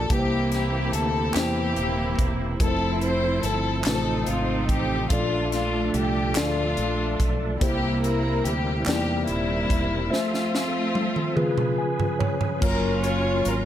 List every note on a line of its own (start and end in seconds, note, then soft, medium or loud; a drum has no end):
0.00 0.11 A#3 medium
0.00 0.12 F4 medium
0.00 0.12 G4 medium
0.00 0.11 A4 medium
0.00 0.12 D5 medium
0.10 0.89 C2 medium
0.10 1.32 C3 medium
0.10 2.56 E3 medium
0.10 2.56 A#3 medium
0.10 1.03 A#3 medium
0.10 1.32 A#3 medium
0.10 2.56 C4 medium
0.10 1.03 E4 medium
0.10 1.32 E4 medium
0.10 2.56 G4 medium
0.10 0.53 G4 medium
0.10 1.04 G4 medium
0.10 0.18 B4 medium
0.10 kick loud
0.10 closed hi-hat medium
0.19 1.07 C5 medium
0.52 0.92 G4 medium
0.52 snare soft
0.52 closed hi-hat soft
0.93 1.31 D2 medium
0.93 1.36 A4 medium
0.93 closed hi-hat medium
1.34 1.74 E2 medium
1.34 2.28 A#3 medium
1.34 2.57 A#3 medium
1.34 2.28 E4 medium
1.34 2.57 E4 medium
1.34 2.29 G4 medium
1.34 2.28 G4 medium
1.34 2.28 C5 medium
1.34 snare medium
1.34 clap medium
1.34 closed hi-hat medium
1.76 2.15 D#1 medium
1.76 closed hi-hat soft
2.19 2.57 E1 medium
2.19 kick medium
2.19 closed hi-hat medium
2.60 3.39 F1 medium
2.60 3.85 F3 medium
2.60 3.53 F3 medium
2.60 3.53 A3 medium
2.60 3.85 C4 medium
2.60 3.82 C4 medium
2.60 3.85 E4 soft
2.60 3.53 E4 medium
2.60 3.82 E4 medium
2.60 2.66 G#4 medium
2.60 3.00 A4 medium
2.60 2.67 A#4 medium
2.60 kick loud
2.60 closed hi-hat medium
2.67 3.85 A4 medium
2.67 3.56 C5 medium
3.01 3.44 C5 medium
3.01 closed hi-hat soft
3.43 3.82 G1 medium
3.43 3.85 A4 medium
3.43 closed hi-hat medium
3.84 4.24 A1 medium
3.84 5.07 C3 medium
3.84 5.10 F3 medium
3.84 4.78 A3 medium
3.84 5.10 C4 medium
3.84 5.06 C4 medium
3.84 5.10 D#4 medium
3.84 5.07 D#4 medium
3.84 4.78 D#4 medium
3.84 4.78 F4 medium
3.84 5.10 A4 medium
3.84 4.24 A4 medium
3.84 3.93 B4 medium
3.84 snare loud
3.84 clap medium
3.84 closed hi-hat medium
3.94 4.82 C5 medium
4.26 4.66 G#1 medium
4.26 4.69 F4 medium
4.26 closed hi-hat soft
4.69 5.07 A1 medium
4.69 5.08 G4 medium
4.69 kick medium
4.69 closed hi-hat medium
5.10 5.90 A#1 medium
5.10 6.32 A#2 medium
5.10 7.57 F3 medium
5.10 6.32 A3 medium
5.10 7.58 A3 medium
5.10 5.17 C#4 medium
5.10 7.57 D4 medium
5.10 6.32 D4 medium
5.10 5.51 F4 medium
5.10 6.04 F4 medium
5.10 6.04 A4 medium
5.10 7.57 A4 medium
5.10 6.04 D5 medium
5.10 kick loud
5.10 closed hi-hat medium
5.19 6.07 D4 medium
5.52 5.91 F4 medium
5.52 snare soft
5.52 closed hi-hat soft
5.94 6.32 C2 medium
5.94 6.37 G4 medium
5.94 closed hi-hat medium
6.35 6.74 D2 medium
6.35 7.58 A3 medium
6.35 7.28 D4 medium
6.35 7.58 D4 medium
6.35 7.30 F4 medium
6.35 7.28 F4 medium
6.35 7.28 A4 medium
6.35 7.29 D5 medium
6.35 snare loud
6.35 clap medium
6.35 closed hi-hat medium
6.77 7.16 A#1 medium
6.77 closed hi-hat soft
7.20 7.58 B1 medium
7.20 kick medium
7.20 closed hi-hat medium
7.61 8.40 C2 medium
7.61 8.83 C3 medium
7.61 10.08 G3 medium
7.61 8.53 A#3 medium
7.61 8.82 A#3 medium
7.61 10.07 C4 medium
7.61 8.54 E4 medium
7.61 10.08 E4 medium
7.61 8.83 E4 medium
7.61 8.54 G4 medium
7.61 8.00 G4 medium
7.61 7.67 A4 medium
7.61 8.54 C5 medium
7.61 kick loud
7.61 closed hi-hat medium
7.67 10.11 A#4 medium
8.04 8.45 A#4 medium
8.04 closed hi-hat soft
8.45 8.83 D2 medium
8.45 8.86 G4 medium
8.45 closed hi-hat medium
8.85 9.25 E2 medium
8.85 9.78 A#3 medium
8.85 8.92 D#4 soft
8.85 9.79 G4 medium
8.85 9.25 G4 medium
8.85 9.79 D5 medium
8.85 snare loud
8.85 clap medium
8.85 closed hi-hat medium
8.92 9.82 E4 medium
9.27 9.67 D#1 medium
9.27 10.08 G3 medium
9.27 10.09 A#3 medium
9.27 10.12 E4 medium
9.27 closed hi-hat soft
9.70 10.08 E1 medium
9.70 kick medium
9.70 closed hi-hat medium
10.10 11.35 F3 medium
10.10 11.04 A3 medium
10.10 11.36 C4 medium
10.10 11.04 F4 medium
10.10 11.80 F4 medium
10.10 11.36 A4 medium
10.10 11.04 C5 medium
10.10 11.36 E5 medium
10.10 11.04 E5 medium
10.10 snare medium
10.15 11.76 A3 medium
10.15 11.76 C4 medium
10.34 snare soft
10.55 snare medium
10.95 high tom medium
11.16 mid tom medium
11.36 12.58 C#3 medium
11.36 12.62 C#3 medium
11.36 12.62 F3 medium
11.36 12.29 F4 medium
11.36 12.29 G#4 medium
11.36 12.62 G#4 medium
11.36 12.62 B4 medium
11.36 12.30 B4 medium
11.36 mid tom medium
11.58 mid tom medium
11.78 12.17 G#5 medium
12.00 floor tom medium
12.19 12.59 C#5 medium
12.19 floor tom medium
12.41 floor tom medium
12.61 13.42 F#1 loud
12.61 13.65 F#3 medium
12.61 13.55 F#3 medium
12.61 13.54 A#3 medium
12.61 13.65 C#4 medium
12.61 13.55 F4 medium
12.61 13.65 F4 medium
12.61 13.65 A#4 medium
12.61 13.02 A#4 medium
12.61 13.55 C#5 medium
12.61 13.65 F5 medium
12.61 kick loud
12.61 crash medium
13.04 13.46 C#5 medium
13.04 closed hi-hat soft
13.45 13.65 G#1 medium
13.45 13.65 A#4 medium
13.45 closed hi-hat medium